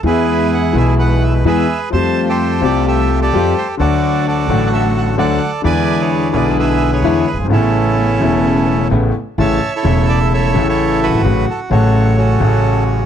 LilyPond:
<<
  \new Staff \with { instrumentName = "Bandoneon" } { \time 4/4 \key a \major \tempo 4 = 129 << { b'4 fis''8 e''8 fis''8 e''8 e''8. r16 | a''8. c''8. d''8 e''8. d''8. c''8 | d''4 d''8.~ d''32 fis''32 e''8 fis''8 fis''8. r16 | gis''8. cis''8. d''8 e''8. cis''8. b'8 |
a'2. r4 | a''8. cis''8. d''8 e''8. cis''8. b'8~ | b'8 a'8 cis''4 a'4. r8 | } \\ { <e' gis'>2 b'4 <gis' b'>4 | c''8. <g' a'>4~ <g' a'>16 <g' a'>8. <g' a'>4~ <g' a'>16 | <fis' a'>4 <fis' a'>4 a'4 <a' d''>4 | <b' d''>8. gis'4~ gis'16 <gis' b'>8. gis'4~ gis'16 |
<cis' e'>2. r4 | <cis'' e''>8. <e' a'>4~ <e' a'>16 <a' cis''>8. <e' a'>8. fis'8~ | fis'4 <fis' a'>4 <cis' fis'>2 | } >> }
  \new Staff \with { instrumentName = "String section" } { \time 4/4 \key a \major <gis b e'>4. <gis b e'>4. <gis b e'>8 r8 | <g a f'>4. <g a f'>4. <g a f'>8 r8 | <a d' fis'>4. <a d' fis'>4. <a d' fis'>8 r8 | <gis d' e'>4. <gis d' e'>4. <gis d' e'>8 r8 |
<a b cis'>4. <a b cis'>4. <a b cis'>8 r8 | r1 | r1 | }
  \new Staff \with { instrumentName = "Grand piano" } { \clef bass \time 4/4 \key a \major << { <e, e gis b gis'>4. <b,, b, e gis b gis'>4. <e, e gis b gis'>8 r8 | <f, f a c' g'>4. <c, c f a c' g'>4. <f, f a c' g'>8 r8 | <d, d fis a fis'>4. <a,, a, d fis a fis'>4. <d, d fis a fis'>8 r8 | <e, d e gis b e'>4. <b,, b, d gis b e'>4. <e, d e gis b e'>8 r8 |
<a,, a, cis a b e'>4. <e,, e, cis a b e'>4. <a,, a, cis a b e'>8 r8 | <a,, a, cis e a e'>8 r8 <e,, e, cis e a e'>4. <a,, a, cis e a e'>4. | <a,, a, cis fis a fis'>8 r8 <a,, a, cis fis a fis'>4. <a,, a, cis fis a fis'>4. | } \\ { r1 | r1 | r1 | r2. r8 r32 fis,,32 g,,32 gis,,32 |
r1 | r2. r8 r32 fis,,32 g,,32 gis,,32 | r1 | } >> }
  \new Staff \with { instrumentName = "Upright bass" } { \clef bass \time 4/4 \key a \major e,4~ e,16. r32 b,,4~ b,,16. r32 e,16. r8 r32 | f,4~ f,16. r32 c,4~ c,16. r32 f,16. r8 r32 | d,4~ d,16. r32 a,,4~ a,,16. r32 d,16. r8 r32 | e,4~ e,16. r32 b,,4~ b,,16. r32 e,16. r16 fis,,32 g,,32 gis,,32 |
a,,4~ a,,16. r32 e,,4~ e,,16. r32 a,,16. r8 r32 | a,,16. r8 r32 e,,4~ e,,16. r32 a,,4~ a,,32 fis,,32 g,,32 gis,,32 | a,,16. r8 r32 a,,4~ a,,16. r32 a,,4~ a,,16. r32 | }
>>